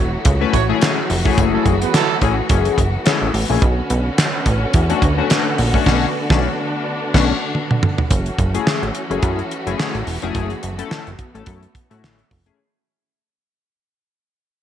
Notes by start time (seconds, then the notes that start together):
Already playing: E1 E3 F#3 A3 F#4 C#5
0.25 C#2 E4 G#4, kick, closed hi-hat
0.40 A3 C#4 E4 B4
0.53 A1 A3 F#4 C#5, kick, closed hi-hat
0.69 A3 C#4 E4 G#4
0.81 snare, clap, closed hi-hat
1.10 F1, open hi-hat
1.24 A3 C#4 E4 G#4, kick
1.38 F#1 B3, kick, closed hi-hat
1.53 F#3 E4 A4
1.66 F#1, kick, closed hi-hat
1.82 B3 G#4 B4, closed hi-hat
1.94 F#3 E4 A4, snare, clap, closed hi-hat
2.21 A1 A3 C#4 E4 G#4, kick, closed hi-hat
2.49 F#1 A3 C#4 E4 G#4, kick, closed hi-hat
2.65 closed hi-hat
2.78 F#1, kick, closed hi-hat
3.05 A3 C#4 E4 G#4, snare, clap, closed hi-hat
3.22 A1
3.34 A1, open hi-hat
3.49 A#1 A3 C#4 E4 G#4
3.62 B1 D3 A3 C#4 F#4, kick, closed hi-hat
3.90 B1, closed hi-hat
4.18 snare, clap, closed hi-hat
4.46 A1, kick, closed hi-hat
4.73 E2 D4 F#4, kick, closed hi-hat
4.89 A3 C#4 D4 F#4, closed hi-hat
5.02 D2, kick, closed hi-hat
5.17 A3 C#4 D4 F#4
5.30 snare, clap, closed hi-hat
5.58 A#1, open hi-hat
5.74 A3 C#4 D4 F#4, kick
5.86 B1 A3 C#4 D4 F#4, kick, snare, crash
6.30 B1 A3 C#4 D4, kick, snare
7.14 B1 A3 C#4 D4 F#4, kick, snare, crash
7.55 high tom
7.71 mid tom
7.83 mid tom
7.98 floor tom
8.11 F#1 E3 F#3 A3 C#4 F#4, kick, closed hi-hat
8.26 closed hi-hat
8.39 F#1, kick, closed hi-hat
8.54 A3 C#4 E4 G#4, closed hi-hat
8.67 snare, clap
8.83 A1, closed hi-hat
8.95 closed hi-hat
9.10 F#1 A3 C#4 E4 G#4, closed hi-hat
9.23 F#2, kick, closed hi-hat
9.39 closed hi-hat
9.51 closed hi-hat
9.66 F#1 A3 C#4 E4 G#4, closed hi-hat
9.80 snare, clap
9.94 A1, closed hi-hat
10.07 E1, open hi-hat
10.22 F1 A3 C#4 E4 G#4, closed hi-hat
10.35 F#1 B3, kick, closed hi-hat
10.50 closed hi-hat
10.63 F#1, closed hi-hat
10.78 A3 C#4 E4 A4, closed hi-hat
10.91 snare, clap
11.07 F#1, closed hi-hat
11.19 kick, closed hi-hat
11.34 A1 A3 C#4 E4 A4, closed hi-hat
11.46 F#2, kick, closed hi-hat
11.63 closed hi-hat
11.75 kick, closed hi-hat
11.90 A2 A3 C#4 E4 F#4, closed hi-hat
12.03 A1, snare, clap
12.19 closed hi-hat
12.31 F1, kick, open hi-hat
12.46 A3 C#4 E4 G#4, closed hi-hat